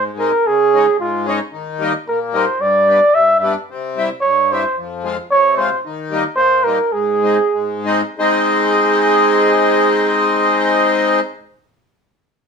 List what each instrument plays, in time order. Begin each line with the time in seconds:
Already playing: accordion G#2
0.17 accordion G#3 C4 D#4, flugelhorn A#4
0.46 accordion C#3, flugelhorn G#4
0.73 accordion G#3 C#4 D#4
0.99 accordion G#2, flugelhorn F4
1.25 accordion G#3 C#4 D#4, flugelhorn D#4
1.52 accordion D#3
1.79 accordion G3 A#3 D#4
2.08 accordion A#2, flugelhorn A#4
2.33 accordion G3 A#3 D#4, flugelhorn C5
2.60 accordion G2, flugelhorn D5
2.88 accordion G3 B3 D4
3.14 accordion G2, flugelhorn E5
3.40 accordion G3 B3 D4, flugelhorn E5
3.70 accordion C3
3.96 accordion G3 C4 E4
4.21 accordion G2, flugelhorn C#5
4.51 accordion G3 C4 E4, flugelhorn C5
4.78 accordion F2
5.04 accordion G#3 C4 F4
5.31 accordion C3, flugelhorn C#5
5.57 accordion G#3 C4 F4, flugelhorn C5
5.85 accordion D#3
6.11 accordion G3 A#3 D#4
6.36 accordion A#2, flugelhorn C5
6.64 accordion G3 A#3 D#4, flugelhorn A#4
6.92 accordion G#2, flugelhorn G#4
7.22 accordion G#3 C4 D#4
7.53 accordion G#2
7.84 accordion G#3 C4 D#4
8.17 accordion G#3 C4 D#4, flugelhorn G#4